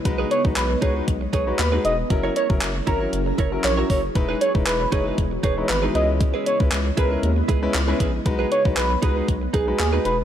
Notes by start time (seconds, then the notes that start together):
Already playing: B3 D#5
0.05 B1 G#3 D#4 F#4 B4, muted clean electric guitar stroke, kick, closed hi-hat
0.18 D#4 G#4 B4
0.30 D#4 G#4 B4 C#5, closed hi-hat
0.44 B1 G#3 D#4 F#4 B4, muted clean electric guitar stroke, kick
0.56 B1 B4, muted clean electric guitar stroke, clap, closed hi-hat
0.70 muted clean electric guitar stroke
0.82 C#2 G#3 D#4 F#4 G#4 B4 C#5, kick, closed hi-hat
0.95 D#4 G#4 B4
1.08 B1, kick, closed hi-hat
1.21 muted clean electric guitar stroke
1.33 B1 D#4 G#4 B4 C#5, kick, closed hi-hat
1.47 G#3 D#4 F#4 B4, muted clean electric guitar stroke
1.59 D#2 B4, muted clean electric guitar stroke, clap, closed hi-hat
1.72 G#3 D#4 F#4 G#4 B4
1.84 E1 D#4 G#4 B4 D#5, closed hi-hat
1.98 muted clean electric guitar stroke
2.10 F#1 F#3 C#4 E4 G#4 A#4, muted clean electric guitar stroke, kick, closed hi-hat
2.24 E4 A#4 C#5
2.36 E4 A#4 C#5, closed hi-hat
2.49 F#1 F#3 C#4 E4 A#4, kick
2.61 F#1, muted clean electric guitar stroke, clap, closed hi-hat
2.75 muted clean electric guitar stroke
2.87 G#1 F#3 C#4 E4 A#4 C#5, kick, closed hi-hat
3.00 E4 A#4 C#5
3.13 F#1, muted clean electric guitar stroke, closed hi-hat
3.26 muted clean electric guitar stroke
3.38 F#1 E4 A#4 C#5, kick, closed hi-hat
3.52 F#3 C#4 E4 A#4, muted clean electric guitar stroke
3.64 A#1 C#5, muted clean electric guitar stroke, clap, closed hi-hat
3.77 F#3 C#4 E4 F#4 A#4 C#5
3.89 F#1 E4 A#4 C#5, kick, open hi-hat
4.15 E1 E3 G#3 B3 D#4 E4 F#4 B4 D#5, muted clean electric guitar stroke, kick, closed hi-hat
4.29 D#4 G#4 B4
4.41 D#4 G#4 B4 C#5, closed hi-hat
4.55 E1 G#3 D#4 E4 B4, kick
4.67 E1 B4, muted clean electric guitar stroke, clap, closed hi-hat
4.80 muted clean electric guitar stroke
4.92 F#1 G#3 D#4 E4 G#4 B4 C#5, kick, closed hi-hat
5.06 D#4 G#4 B4
5.18 E1, muted clean electric guitar stroke, kick, closed hi-hat
5.31 muted clean electric guitar stroke
5.43 E1 D#4 G#4 B4 C#5, kick, closed hi-hat
5.57 G#3 D#4 E4 B4, muted clean electric guitar stroke
5.69 G#1 B4, muted clean electric guitar stroke, clap, closed hi-hat
5.83 G#3 D#4 E4 G#4 B4
5.95 C#2 C#3 G#3 C#4 E4 G#4 B4 D#5, closed hi-hat
6.20 muted clean electric guitar stroke, kick, closed hi-hat
6.34 E4 G#4 B4
6.46 E4 G#4 B4 C#5, closed hi-hat
6.60 C#2 G#3 C#4 E4 B4, kick
6.72 C#2, muted clean electric guitar stroke, clap, closed hi-hat
6.85 muted clean electric guitar stroke
6.97 C#2 G#3 C#4 E4 G#4 A#4 B4, kick, closed hi-hat
7.11 E4 G#4 B4
7.23 D#2, closed hi-hat
7.36 muted clean electric guitar stroke
7.48 C#2 E4 G#4 B4, kick, closed hi-hat
7.62 G#3 C#4 E4 B4, muted clean electric guitar stroke
7.74 C#2, muted clean electric guitar stroke, clap, closed hi-hat
7.88 G#3 C#4 E4 G#4 B4
8.00 A#1 E4 G#4 B4, kick, closed hi-hat
8.13 muted clean electric guitar stroke
8.25 B1 G#3 D#4 F#4 B4, muted clean electric guitar stroke, kick, closed hi-hat
8.39 D#4 G#4 B4
8.51 D#4 G#4 B4 C#5, closed hi-hat
8.65 B1 G#3 D#4 F#4 B4, kick
8.77 B1 B4, muted clean electric guitar stroke, clap, closed hi-hat
8.90 muted clean electric guitar stroke
9.02 C#2 G#3 D#4 F#4 G#4 B4, kick, closed hi-hat
9.16 D#4 G#4 B4
9.28 B1, kick, closed hi-hat
9.41 muted clean electric guitar stroke
9.53 B1 D#4 G#4 B4, kick, closed hi-hat
9.67 G#3 D#4 F#4 B4, muted clean electric guitar stroke
9.79 D#2 G#4, muted clean electric guitar stroke, clap, closed hi-hat
9.93 G#3 D#4 F#4 G#4 B4
10.05 E1 D#4 G#4 B4, closed hi-hat